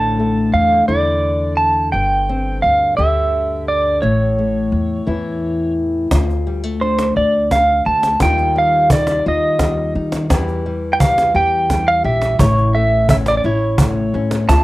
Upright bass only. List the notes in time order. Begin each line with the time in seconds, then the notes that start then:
Already playing: A1
0.54 E2
0.89 E2
1.93 G1
2.64 D2
2.98 D2
4.03 A1
4.72 E2
5.07 E2
6.12 D2
7.16 D2
7.86 D2
8.22 D#2
9.26 D#2
9.95 D#3
10.30 E2
11.35 E2
12.05 A#1
12.39 A1
13.44 A1
14.14 A2
14.49 D2